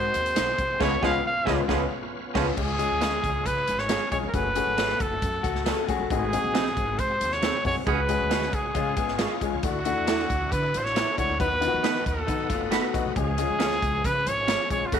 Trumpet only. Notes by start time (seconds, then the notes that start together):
Already playing: C5
0.82 C#5
1.05 F5
1.27 F5
2.58 G#4
3.46 B4
3.79 C#5
4.12 C#5
4.28 A#4
4.34 B4
5.01 A4
6.12 G#4
6.99 C5
7.33 C#5
7.66 C#5
7.88 B4
8.54 G#4
9.64 F#4
10.52 B4
10.77 C5
10.84 C#5
11.18 C#5
11.40 B4
12.07 A4
13.17 G#4
14.06 B4
14.28 C#5
14.71 C#5
14.87 F4
14.94 F#4